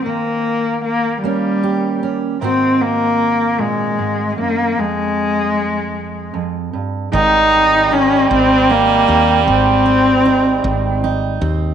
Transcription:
<<
  \new Staff \with { instrumentName = "Steel-string acoustic guitar" } { \time 6/8 \key aes \major \tempo 4. = 51 << { r4. des'8 g'8 des'8 | <ees c' ees' ges'>2. | r2. | <ees c' ees'>4 ees'4 ees'8 c'8 |
r8 c'8 ees'4 ees'8 c'8 | } \\ { ees4. bes4. | aes,4. bes,8 aes,8 ges,8 | f,2 f,8 g,8 | aes,2. |
aes,2. | } >> }
  \new Staff \with { instrumentName = "Cello" } { \time 6/8 \key aes \major bes4 bes8 g4 r8 | c'8 bes4 aes4 bes8 | aes2 r4 | ees'4 des'8 c'8 bes4 |
c'2 r4 | }
  \new Staff \with { instrumentName = "French horn" } { \clef bass \time 6/8 \key aes \major r2. | r2. | r2. | g2.~ |
g2~ g8 r8 | }
  \new Staff \with { instrumentName = "Fretless electric bass" } { \clef bass \time 6/8 \key aes \major r2. | r2. | r2. | aes,,4. aes,,4 ees,8 |
aes,,4. aes,,4 ees,8 | }
>>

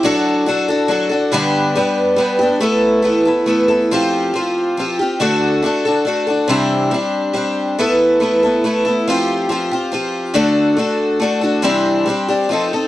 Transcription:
\new Staff \with { instrumentName = "Twelve-string acoustic guitar" } { \time 3/4 \key a \dorian \tempo 4 = 140 <fis d' fis' a'>4 <fis d' fis' a'>8 <d' fis' a'>8 <fis d' fis' a'>8 <d' fis' a'>8 | <g, d g b d' g'>4 <g b d' g'>4 <g b d' g'>8 <g b d' g'>8 | <a b e' a'>4 <a b e' a'>8 <b e' a'>8 <a b e' a'>8 <b e' a'>8 | <f c' f' g'>4 <f c' f' g'>4 <f c' f' g'>8 <c' f' g'>8 |
<d a d' fis' a'>4 <a d' fis' a'>8 <d' fis' a'>8 <a d' fis' a'>8 <d' fis' a'>8 | <c e g c' d' g'>4 <g c' d' g'>4 <g c' d' g'>4 | <a b e' a'>4 <a b e' a'>8 <b e' a'>8 <a b e' a'>8 <b e' a'>8 | <f c' f' g'>4 <f c' f' g'>8 <c' f' g'>8 <f c' f' g'>4 |
<d a d' fis' a'>4 <a d' fis' a'>4 <a d' fis' a'>8 <d' fis' a'>8 | <c e g c' d' g'>4 <g c' d' g'>8 <g c' d' g'>8 <f c' ees' a'>8 <c' ees' a'>8 | }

